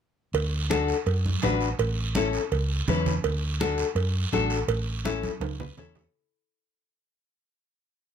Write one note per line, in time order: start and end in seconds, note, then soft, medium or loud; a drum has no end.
0.33 0.92 D2 medium
0.33 cowbell loud
0.33 high conga soft
0.33 long guiro medium
0.70 0.95 D4 medium
0.70 0.96 F#4 medium
0.70 0.96 A4 medium
0.70 high conga loud
0.70 short guiro medium
0.88 short guiro medium
1.06 1.35 F#2 loud
1.06 cowbell medium
1.06 high conga soft
1.06 long guiro medium
1.26 high conga medium
1.42 1.72 A1 medium
1.42 1.68 D4 medium
1.42 1.68 F#4 medium
1.42 1.68 B4 medium
1.42 high conga medium
1.42 low timbale medium
1.42 short guiro medium
1.61 short guiro medium
1.79 2.37 A1 loud
1.79 cowbell loud
1.79 high conga soft
1.79 long guiro medium
2.15 2.41 C#4 medium
2.15 2.41 E4 medium
2.15 2.41 A4 medium
2.15 high conga medium
2.15 short guiro medium
2.33 short guiro medium
2.52 2.81 C#2 loud
2.52 cowbell medium
2.52 high conga soft
2.52 long guiro medium
2.88 3.17 E2 medium
2.88 3.13 C#4 medium
2.88 3.14 E4 medium
2.88 3.14 B4 medium
2.88 high conga medium
2.88 low conga medium
2.88 short guiro medium
3.06 low conga medium
3.06 short guiro medium
3.24 3.82 D2 medium
3.24 cowbell loud
3.24 high conga soft
3.24 long guiro medium
3.60 3.86 D4 medium
3.60 3.86 F#4 medium
3.60 3.86 A4 medium
3.60 high conga loud
3.60 short guiro medium
3.78 short guiro medium
3.95 4.25 F#2 loud
3.95 cowbell medium
3.95 high conga soft
3.95 long guiro medium
4.32 4.61 A1 medium
4.32 4.58 D4 medium
4.32 4.58 F#4 medium
4.32 4.58 A4 medium
4.32 high conga medium
4.32 short guiro medium
4.50 short guiro medium
4.68 5.26 A1 loud
4.68 cowbell loud
4.68 high conga soft
4.68 long guiro medium
5.05 5.30 C#4 medium
5.05 5.30 E4 medium
5.05 5.31 A4 medium
5.05 high conga medium
5.05 short guiro medium
5.23 high conga medium
5.23 short guiro medium
5.40 5.70 C#2 medium
5.40 cowbell medium
5.40 high conga medium
5.40 high timbale medium
5.40 long guiro medium
5.60 5.76 B4 medium
5.60 low conga loud
5.77 6.06 E2 medium
5.77 6.03 C#4 medium
5.77 6.03 E4 medium
5.77 6.03 A4 medium
5.77 5.95 C#5 medium
5.77 low conga loud
5.77 short guiro medium
5.95 6.13 C#5 medium
5.95 low conga medium
5.95 low timbale medium
5.95 short guiro medium